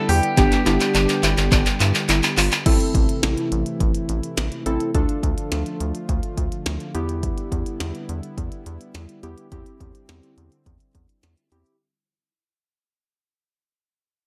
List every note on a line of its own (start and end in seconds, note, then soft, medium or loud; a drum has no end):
0.00 0.33 D3 medium
0.00 2.62 G3 medium
0.00 2.62 B3 medium
0.00 0.35 E4 medium
0.09 0.21 E2 loud
0.09 0.27 G4 medium
0.09 2.05 G4 medium
0.09 open hi-hat medium
0.23 closed hi-hat medium
0.37 0.50 G1 loud
0.37 2.64 D3 medium
0.37 0.62 B3 medium
0.37 0.62 D4 medium
0.37 0.55 G4 loud
0.37 0.62 G4 medium
0.37 2.64 G4 medium
0.37 kick loud
0.37 clap medium
0.37 closed hi-hat medium
0.52 clap medium
0.52 closed hi-hat medium
0.66 0.78 G1 loud
0.66 1.64 B3 medium
0.66 1.64 D4 medium
0.66 0.84 E4 medium
0.66 1.64 G4 medium
0.66 clap medium
0.66 closed hi-hat medium
0.80 clap medium
0.80 closed hi-hat medium
0.95 1.07 G1 loud
0.95 1.13 D4 medium
0.95 clap medium
0.95 closed hi-hat medium
1.09 clap medium
1.09 closed hi-hat medium
1.23 1.35 G1 medium
1.23 1.41 E4 medium
1.23 clap medium
1.23 closed hi-hat medium
1.37 1.50 G1 loud
1.37 clap medium
1.37 closed hi-hat medium
1.52 1.64 G1 loud
1.52 1.70 D4 loud
1.52 kick loud
1.52 clap medium
1.52 closed hi-hat medium
1.66 clap medium
1.66 closed hi-hat medium
1.80 1.92 G2 loud
1.80 1.98 E4 medium
1.80 clap loud
1.80 closed hi-hat medium
1.95 clap medium
1.95 closed hi-hat medium
2.09 2.21 G1 loud
2.09 2.27 E4 medium
2.09 clap loud
2.09 closed hi-hat medium
2.23 clap loud
2.23 closed hi-hat medium
2.37 2.49 G1 loud
2.37 2.55 F4 medium
2.37 clap loud
2.37 open hi-hat medium
2.52 clap loud
2.52 closed hi-hat medium
2.66 2.78 A1 loud
2.66 4.92 C3 medium
2.66 4.92 E3 medium
2.66 4.92 A3 medium
2.66 3.64 C4 medium
2.66 4.92 E4 medium
2.66 3.64 E4 medium
2.66 3.64 A4 loud
2.66 kick loud
2.66 closed hi-hat medium
2.66 crash medium
2.80 closed hi-hat medium
2.95 3.07 A1 loud
2.95 kick loud
2.95 closed hi-hat medium
3.09 closed hi-hat medium
3.23 3.35 A1 loud
3.23 snare loud
3.23 closed hi-hat medium
3.38 closed hi-hat soft
3.52 3.64 A1 loud
3.52 closed hi-hat medium
3.66 closed hi-hat soft
3.80 3.92 A1 loud
3.80 kick medium
3.80 closed hi-hat medium
3.95 closed hi-hat medium
4.09 4.21 A1 loud
4.09 closed hi-hat medium
4.23 closed hi-hat medium
4.37 4.50 A1 medium
4.37 snare loud
4.37 closed hi-hat medium
4.52 closed hi-hat soft
4.66 4.78 A1 loud
4.66 4.91 C4 medium
4.66 4.91 E4 medium
4.66 4.91 A4 loud
4.66 closed hi-hat medium
4.80 closed hi-hat medium
4.95 5.07 D2 loud
4.95 9.48 D3 medium
4.95 6.93 F3 medium
4.95 6.93 A3 medium
4.95 5.93 D4 medium
4.95 5.93 F4 medium
4.95 6.93 F4 medium
4.95 5.93 A4 medium
4.95 kick loud
4.95 closed hi-hat medium
5.09 closed hi-hat medium
5.23 5.35 D2 loud
5.23 kick medium
5.23 closed hi-hat medium
5.38 closed hi-hat medium
5.52 5.64 D2 loud
5.52 snare loud
5.52 closed hi-hat medium
5.66 closed hi-hat soft
5.80 5.92 D2 medium
5.80 closed hi-hat medium
5.95 closed hi-hat soft
6.09 6.21 D2 loud
6.09 kick medium
6.09 closed hi-hat medium
6.23 closed hi-hat soft
6.37 6.49 D2 medium
6.37 kick medium
6.37 closed hi-hat medium
6.52 closed hi-hat medium
6.66 6.78 D2 medium
6.66 snare loud
6.66 closed hi-hat medium
6.80 closed hi-hat soft
6.95 7.31 E2 loud
6.95 11.76 G3 medium
6.95 9.49 B3 medium
6.95 7.93 B3 medium
6.95 11.76 E4 medium
6.95 7.93 E4 medium
6.95 7.93 G4 loud
6.95 closed hi-hat medium
7.09 closed hi-hat medium
7.23 kick loud
7.23 closed hi-hat medium
7.38 closed hi-hat medium
7.52 7.64 E2 loud
7.52 kick medium
7.52 closed hi-hat medium
7.66 closed hi-hat medium
7.80 7.92 E2 loud
7.80 snare loud
7.80 closed hi-hat medium
7.95 closed hi-hat soft
8.09 8.21 E2 loud
8.09 closed hi-hat medium
8.23 closed hi-hat soft
8.38 8.50 E2 loud
8.38 kick medium
8.38 closed hi-hat medium
8.52 closed hi-hat medium
8.66 8.78 E2 medium
8.66 closed hi-hat medium
8.81 closed hi-hat medium
8.95 9.07 E2 medium
8.95 snare loud
8.95 closed hi-hat medium
9.09 closed hi-hat soft
9.23 9.35 E2 loud
9.23 9.48 B3 medium
9.23 9.48 E4 medium
9.23 9.48 G4 medium
9.23 closed hi-hat medium
9.38 closed hi-hat medium
9.52 9.64 E2 loud
9.52 11.78 D3 medium
9.52 11.78 C4 medium
9.52 10.50 C4 medium
9.52 10.50 E4 medium
9.52 10.50 G4 medium
9.52 kick loud
9.52 closed hi-hat medium
9.66 closed hi-hat medium
9.80 9.92 E2 loud
9.80 kick medium
9.80 closed hi-hat medium
9.95 closed hi-hat medium
10.09 10.21 E2 loud
10.09 snare loud
10.09 closed hi-hat medium
10.23 closed hi-hat soft
10.37 10.50 E2 loud
10.37 closed hi-hat medium
10.52 closed hi-hat soft
10.66 10.78 E2 loud
10.66 kick medium
10.66 closed hi-hat medium
10.80 closed hi-hat soft
10.95 11.07 E2 medium
10.95 kick medium
10.95 closed hi-hat medium
11.09 closed hi-hat soft
11.23 11.35 E2 loud
11.23 snare loud
11.23 closed hi-hat medium
11.37 closed hi-hat soft
11.52 11.64 E2 loud
11.52 11.76 C4 medium
11.52 11.76 E4 medium
11.52 11.76 G4 medium
11.52 closed hi-hat medium
11.66 closed hi-hat medium